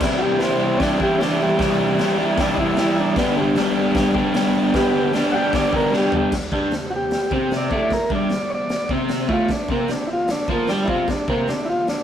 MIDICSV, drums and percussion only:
0, 0, Header, 1, 2, 480
1, 0, Start_track
1, 0, Key_signature, 1, "major"
1, 0, Tempo, 395517
1, 19, Time_signature, 4, 2, 24, 8
1, 14603, End_track
2, 0, Start_track
2, 0, Title_t, "Drums"
2, 5, Note_on_c, 9, 49, 102
2, 8, Note_on_c, 9, 36, 124
2, 18, Note_on_c, 9, 38, 111
2, 126, Note_off_c, 9, 49, 0
2, 130, Note_off_c, 9, 36, 0
2, 140, Note_off_c, 9, 38, 0
2, 483, Note_on_c, 9, 46, 58
2, 496, Note_on_c, 9, 38, 103
2, 604, Note_off_c, 9, 46, 0
2, 617, Note_off_c, 9, 38, 0
2, 971, Note_on_c, 9, 36, 119
2, 973, Note_on_c, 9, 46, 66
2, 986, Note_on_c, 9, 38, 123
2, 1092, Note_off_c, 9, 36, 0
2, 1094, Note_off_c, 9, 46, 0
2, 1108, Note_off_c, 9, 38, 0
2, 1212, Note_on_c, 9, 36, 79
2, 1334, Note_off_c, 9, 36, 0
2, 1460, Note_on_c, 9, 46, 59
2, 1474, Note_on_c, 9, 38, 108
2, 1582, Note_off_c, 9, 46, 0
2, 1595, Note_off_c, 9, 38, 0
2, 1930, Note_on_c, 9, 36, 109
2, 1935, Note_on_c, 9, 46, 62
2, 1948, Note_on_c, 9, 38, 119
2, 2051, Note_off_c, 9, 36, 0
2, 2056, Note_off_c, 9, 46, 0
2, 2070, Note_off_c, 9, 38, 0
2, 2409, Note_on_c, 9, 46, 59
2, 2422, Note_on_c, 9, 38, 107
2, 2530, Note_off_c, 9, 46, 0
2, 2543, Note_off_c, 9, 38, 0
2, 2884, Note_on_c, 9, 36, 121
2, 2886, Note_on_c, 9, 46, 70
2, 2899, Note_on_c, 9, 38, 119
2, 3005, Note_off_c, 9, 36, 0
2, 3007, Note_off_c, 9, 46, 0
2, 3021, Note_off_c, 9, 38, 0
2, 3122, Note_on_c, 9, 36, 85
2, 3243, Note_off_c, 9, 36, 0
2, 3351, Note_on_c, 9, 46, 66
2, 3364, Note_on_c, 9, 38, 116
2, 3472, Note_off_c, 9, 46, 0
2, 3485, Note_off_c, 9, 38, 0
2, 3837, Note_on_c, 9, 36, 116
2, 3838, Note_on_c, 9, 46, 64
2, 3851, Note_on_c, 9, 38, 113
2, 3958, Note_off_c, 9, 36, 0
2, 3959, Note_off_c, 9, 46, 0
2, 3973, Note_off_c, 9, 38, 0
2, 4312, Note_on_c, 9, 46, 63
2, 4326, Note_on_c, 9, 38, 111
2, 4434, Note_off_c, 9, 46, 0
2, 4447, Note_off_c, 9, 38, 0
2, 4790, Note_on_c, 9, 46, 61
2, 4793, Note_on_c, 9, 36, 121
2, 4803, Note_on_c, 9, 38, 121
2, 4911, Note_off_c, 9, 46, 0
2, 4914, Note_off_c, 9, 36, 0
2, 4924, Note_off_c, 9, 38, 0
2, 5033, Note_on_c, 9, 36, 86
2, 5154, Note_off_c, 9, 36, 0
2, 5268, Note_on_c, 9, 46, 61
2, 5281, Note_on_c, 9, 38, 107
2, 5389, Note_off_c, 9, 46, 0
2, 5402, Note_off_c, 9, 38, 0
2, 5750, Note_on_c, 9, 46, 60
2, 5752, Note_on_c, 9, 36, 119
2, 5763, Note_on_c, 9, 38, 117
2, 5871, Note_off_c, 9, 46, 0
2, 5873, Note_off_c, 9, 36, 0
2, 5885, Note_off_c, 9, 38, 0
2, 6225, Note_on_c, 9, 46, 62
2, 6238, Note_on_c, 9, 38, 111
2, 6346, Note_off_c, 9, 46, 0
2, 6360, Note_off_c, 9, 38, 0
2, 6709, Note_on_c, 9, 46, 72
2, 6712, Note_on_c, 9, 36, 122
2, 6722, Note_on_c, 9, 38, 123
2, 6830, Note_off_c, 9, 46, 0
2, 6833, Note_off_c, 9, 36, 0
2, 6843, Note_off_c, 9, 38, 0
2, 6951, Note_on_c, 9, 36, 86
2, 7072, Note_off_c, 9, 36, 0
2, 7202, Note_on_c, 9, 38, 65
2, 7323, Note_off_c, 9, 38, 0
2, 7428, Note_on_c, 9, 43, 94
2, 7549, Note_off_c, 9, 43, 0
2, 7669, Note_on_c, 9, 36, 91
2, 7669, Note_on_c, 9, 49, 99
2, 7682, Note_on_c, 9, 38, 101
2, 7790, Note_off_c, 9, 49, 0
2, 7791, Note_off_c, 9, 36, 0
2, 7803, Note_off_c, 9, 38, 0
2, 7910, Note_on_c, 9, 36, 89
2, 8032, Note_off_c, 9, 36, 0
2, 8145, Note_on_c, 9, 46, 50
2, 8158, Note_on_c, 9, 38, 107
2, 8266, Note_off_c, 9, 46, 0
2, 8280, Note_off_c, 9, 38, 0
2, 8627, Note_on_c, 9, 46, 53
2, 8640, Note_on_c, 9, 38, 108
2, 8748, Note_off_c, 9, 46, 0
2, 8762, Note_off_c, 9, 38, 0
2, 8873, Note_on_c, 9, 36, 100
2, 8994, Note_off_c, 9, 36, 0
2, 9112, Note_on_c, 9, 46, 50
2, 9125, Note_on_c, 9, 38, 106
2, 9233, Note_off_c, 9, 46, 0
2, 9247, Note_off_c, 9, 38, 0
2, 9354, Note_on_c, 9, 36, 100
2, 9476, Note_off_c, 9, 36, 0
2, 9594, Note_on_c, 9, 36, 94
2, 9594, Note_on_c, 9, 46, 50
2, 9607, Note_on_c, 9, 38, 104
2, 9715, Note_off_c, 9, 36, 0
2, 9715, Note_off_c, 9, 46, 0
2, 9729, Note_off_c, 9, 38, 0
2, 9831, Note_on_c, 9, 36, 100
2, 9953, Note_off_c, 9, 36, 0
2, 10066, Note_on_c, 9, 46, 50
2, 10080, Note_on_c, 9, 38, 96
2, 10188, Note_off_c, 9, 46, 0
2, 10201, Note_off_c, 9, 38, 0
2, 10549, Note_on_c, 9, 46, 52
2, 10562, Note_on_c, 9, 38, 109
2, 10670, Note_off_c, 9, 46, 0
2, 10683, Note_off_c, 9, 38, 0
2, 10792, Note_on_c, 9, 36, 100
2, 10913, Note_off_c, 9, 36, 0
2, 11026, Note_on_c, 9, 46, 55
2, 11039, Note_on_c, 9, 38, 98
2, 11147, Note_off_c, 9, 46, 0
2, 11160, Note_off_c, 9, 38, 0
2, 11273, Note_on_c, 9, 36, 101
2, 11394, Note_off_c, 9, 36, 0
2, 11508, Note_on_c, 9, 46, 54
2, 11513, Note_on_c, 9, 36, 96
2, 11521, Note_on_c, 9, 38, 113
2, 11629, Note_off_c, 9, 46, 0
2, 11635, Note_off_c, 9, 36, 0
2, 11642, Note_off_c, 9, 38, 0
2, 11754, Note_on_c, 9, 36, 97
2, 11875, Note_off_c, 9, 36, 0
2, 11991, Note_on_c, 9, 46, 54
2, 12005, Note_on_c, 9, 38, 100
2, 12113, Note_off_c, 9, 46, 0
2, 12126, Note_off_c, 9, 38, 0
2, 12471, Note_on_c, 9, 46, 55
2, 12485, Note_on_c, 9, 38, 109
2, 12593, Note_off_c, 9, 46, 0
2, 12606, Note_off_c, 9, 38, 0
2, 12718, Note_on_c, 9, 36, 103
2, 12839, Note_off_c, 9, 36, 0
2, 12952, Note_on_c, 9, 46, 51
2, 12965, Note_on_c, 9, 38, 104
2, 13073, Note_off_c, 9, 46, 0
2, 13086, Note_off_c, 9, 38, 0
2, 13201, Note_on_c, 9, 36, 93
2, 13323, Note_off_c, 9, 36, 0
2, 13440, Note_on_c, 9, 46, 49
2, 13445, Note_on_c, 9, 36, 101
2, 13454, Note_on_c, 9, 38, 102
2, 13562, Note_off_c, 9, 46, 0
2, 13566, Note_off_c, 9, 36, 0
2, 13575, Note_off_c, 9, 38, 0
2, 13688, Note_on_c, 9, 36, 97
2, 13809, Note_off_c, 9, 36, 0
2, 13929, Note_on_c, 9, 46, 51
2, 13942, Note_on_c, 9, 38, 101
2, 14050, Note_off_c, 9, 46, 0
2, 14063, Note_off_c, 9, 38, 0
2, 14408, Note_on_c, 9, 46, 54
2, 14421, Note_on_c, 9, 38, 112
2, 14529, Note_off_c, 9, 46, 0
2, 14543, Note_off_c, 9, 38, 0
2, 14603, End_track
0, 0, End_of_file